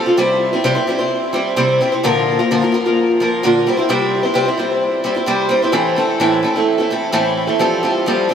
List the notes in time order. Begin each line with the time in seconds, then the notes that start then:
0.06 C4 F4 A4
0.17 C3 G3 C4 E4 C5
0.53 C4 E4 C5
0.64 C3 G3 C4 E4 C5
0.75 C4 E4 C5
0.87 G3 C4 E4 C5
0.98 C4 E4 C5
1.33 G3 C4 E4 C5
1.56 C3 G3 C4 E4 C5
1.81 G3 C4 E4 C5
1.92 C4 E4 C5
2.03 A#2 D3 F3 A#3 F4 A#4
2.39 F3 A#3 F4 A#4
2.51 A#2 D3 F3 A#3 F4 A#4
2.62 F3 A#3 F4 A#4
2.72 F3 A#3 F4 A#4
2.85 F3 A#3 F4 A#4
3.20 F3 A#3 F4 A#4
3.43 A#2 D3 F3 A#3 F4 A#4
3.66 G3 C4 E4 C5
3.77 C4 E4 C5
3.89 C3 G3 C4 E4 C5
4.23 C4 E4 C5
4.34 C3 G3 C4 E4 C5
4.46 C4 E4 C5
4.58 G3 C4 E4 C5
5.04 G3 C4 E4 C5
5.15 C4 E4 C5
5.26 C3 G3 C4 E4 C5
5.49 G3 C4 E4 C5
5.62 C4 E4 C5
5.72 A2 E3 A3 C4 E4 A4
5.96 A3 C4 E4 A4
6.20 A2 E3 A3 C4 E4 A4
6.43 A3 C4 E4 A4
6.56 A3 C4 E4 A4
6.78 A3 C4 E4 A4
6.90 A3 C4 E4 A4
7.12 A2 E3 A3 C4 E4 A4
7.47 A3 C4 E4 A4
7.59 F3 G3 C4 F4 A4
7.83 G3 C4 F4 A4
8.06 F3 G3 C4 F4 A4
8.29 G3 C4